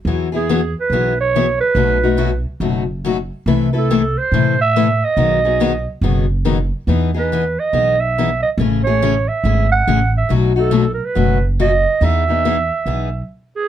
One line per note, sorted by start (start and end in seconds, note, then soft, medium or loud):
0.05 0.73 E2 medium
0.05 0.27 E3 medium
0.05 0.27 F#3 medium
0.05 0.27 B3 medium
0.05 0.27 E4 medium
0.05 0.27 G#4 medium
0.32 0.48 B3 soft
0.32 0.48 E4 soft
0.32 0.47 G#4 soft
0.36 0.74 G#4 medium
0.49 0.60 E3 medium
0.49 0.60 F#3 medium
0.49 0.60 B3 medium
0.49 0.60 E4 medium
0.49 0.60 G#4 medium
0.80 1.17 B4 medium
0.90 1.58 B1 medium
0.90 1.13 E3 medium
0.90 1.12 F#3 medium
0.90 1.13 B3 medium
0.90 1.13 E4 medium
0.90 1.13 G#4 medium
1.21 1.59 C#5 medium
1.35 1.45 E3 medium
1.35 1.46 F#3 medium
1.35 1.46 B3 medium
1.35 1.46 E4 medium
1.35 1.46 G#4 medium
1.60 2.41 B4 medium
1.75 2.43 B1 medium
1.75 1.97 B2 medium
1.75 1.97 F#3 medium
1.75 1.97 A3 medium
1.75 1.98 D#4 medium
1.75 1.98 F#4 medium
2.03 2.17 A3 soft
2.03 2.17 D#4 soft
2.03 2.17 F#4 soft
2.17 2.29 B2 medium
2.17 2.29 F#3 medium
2.17 2.29 A3 medium
2.17 2.29 D#4 medium
2.17 2.30 F#4 medium
2.60 3.29 F#1 medium
2.60 2.82 B2 medium
2.60 2.82 F#3 medium
2.60 2.83 A3 medium
2.60 2.82 D#4 medium
2.60 2.83 F#4 medium
3.05 3.15 B2 medium
3.05 3.15 F#3 medium
3.05 3.16 A3 medium
3.05 3.16 D#4 medium
3.05 3.16 F#4 medium
3.46 4.14 C2 medium
3.46 3.68 C3 medium
3.46 3.68 E3 medium
3.46 3.68 A3 medium
3.46 3.68 E4 medium
3.46 3.69 A4 medium
3.46 3.68 B4 medium
3.73 3.90 A3 soft
3.73 3.89 E4 soft
3.73 3.89 A4 soft
3.73 3.89 B4 medium
3.78 4.19 A4 medium
3.90 4.01 C3 medium
3.90 4.01 E3 medium
3.90 4.01 A3 medium
3.90 4.01 E4 medium
3.90 4.01 A4 medium
3.90 4.02 B4 medium
4.18 4.59 C5 medium
4.32 5.00 A2 medium
4.32 4.54 C3 medium
4.32 4.54 E3 medium
4.32 4.54 A3 medium
4.32 4.54 E4 medium
4.32 4.54 A4 medium
4.32 4.54 B4 medium
4.61 5.06 E5 loud
4.76 4.87 C3 medium
4.76 4.87 E3 medium
4.76 4.87 A3 medium
4.76 4.87 E4 medium
4.76 4.87 A4 medium
4.76 4.87 B4 medium
5.05 5.88 D#5 medium
5.17 5.85 B1 medium
5.17 5.38 B2 medium
5.17 5.39 D#3 medium
5.17 5.39 F#3 medium
5.17 5.39 B3 medium
5.17 5.39 D#4 medium
5.17 5.39 G#4 medium
5.45 5.59 F#3 soft
5.45 5.60 B3 soft
5.45 5.60 D#4 soft
5.45 5.60 G#4 soft
5.60 5.71 B2 medium
5.60 5.72 D#3 medium
5.60 5.72 F#3 medium
5.60 5.72 B3 medium
5.60 5.72 D#4 medium
5.60 5.72 G#4 medium
6.01 6.70 F#1 medium
6.01 6.24 B2 medium
6.01 6.24 D#3 medium
6.01 6.25 F#3 medium
6.01 6.24 B3 medium
6.01 6.25 D#4 medium
6.01 6.25 G#4 medium
6.45 6.56 B2 medium
6.45 6.57 D#3 medium
6.45 6.57 F#3 medium
6.45 6.57 B3 medium
6.45 6.57 D#4 medium
6.45 6.57 G#4 medium
6.87 7.56 E2 medium
6.87 7.09 E3 medium
6.87 7.10 B3 medium
6.87 7.10 D#4 medium
6.87 7.10 G#4 medium
7.14 7.31 B3 soft
7.14 7.31 D#4 soft
7.14 7.30 G#4 medium
7.14 7.61 B4 medium
7.32 7.43 E3 medium
7.32 7.43 B3 medium
7.32 7.43 D#4 medium
7.32 7.43 G#4 medium
7.60 8.02 D#5 medium
7.73 8.42 B1 medium
7.73 7.95 E3 medium
7.73 7.95 B3 medium
7.73 7.95 D#4 medium
7.73 7.95 G#4 medium
8.01 8.42 E5 medium
8.18 8.29 E3 medium
8.18 8.29 B3 medium
8.18 8.29 D#4 medium
8.18 8.29 G#4 medium
8.43 8.50 D#5 medium
8.58 9.27 A1 medium
8.58 8.81 C#3 medium
8.58 8.81 E3 medium
8.58 8.81 A3 medium
8.58 8.81 C#4 medium
8.58 8.81 G#4 medium
8.84 9.02 A3 soft
8.84 9.02 C#4 soft
8.84 9.02 G#4 medium
8.84 9.30 C#5 medium
9.02 9.13 C#3 medium
9.02 9.14 E3 medium
9.02 9.14 A3 medium
9.02 9.14 C#4 medium
9.02 9.14 G#4 medium
9.28 9.71 E5 medium
9.44 9.80 G#1 medium
9.44 9.66 C#3 medium
9.44 9.66 E3 medium
9.44 9.66 A3 medium
9.44 9.67 C#4 medium
9.44 9.66 G#4 medium
9.72 10.11 F#5 medium
9.87 10.24 A1 medium
9.87 9.99 C#3 medium
9.87 9.99 E3 medium
9.87 9.99 A3 medium
9.87 9.99 C#4 medium
9.87 9.99 G#4 medium
10.18 10.31 E5 medium
10.29 10.99 B1 medium
10.29 10.51 B2 medium
10.29 10.52 F#3 medium
10.29 10.51 A3 medium
10.29 10.51 D#4 medium
10.29 10.52 F#4 medium
10.56 10.70 A3 soft
10.56 10.71 D#4 soft
10.56 10.71 F#4 medium
10.56 10.89 A4 medium
10.71 10.83 B2 medium
10.71 10.84 F#3 medium
10.71 10.83 A3 medium
10.71 10.84 D#4 medium
10.71 10.84 F#4 medium
10.94 11.07 A#4 medium
11.05 11.45 B4 medium
11.15 11.84 F#1 medium
11.15 11.37 B2 medium
11.15 11.37 F#3 medium
11.15 11.37 A3 medium
11.15 11.37 D#4 medium
11.15 11.38 F#4 medium
11.59 11.70 B2 medium
11.59 11.70 F#3 medium
11.59 11.70 A3 medium
11.59 11.70 D#4 medium
11.59 11.70 F#4 medium
11.59 12.06 D#5 medium
12.01 12.69 E2 medium
12.01 12.23 E3 medium
12.01 12.23 B3 medium
12.01 12.23 D#4 medium
12.01 12.23 G#4 medium
12.01 13.31 E5 medium
12.28 12.44 B3 soft
12.28 12.44 D#4 soft
12.28 12.43 G#4 soft
12.45 12.56 E3 medium
12.45 12.56 B3 medium
12.45 12.56 D#4 medium
12.45 12.56 G#4 medium
12.86 13.20 B1 medium
12.86 13.08 E3 soft
12.86 13.08 B3 medium
12.86 13.08 D#4 medium
12.86 13.08 G#4 medium
13.56 13.68 G#4 medium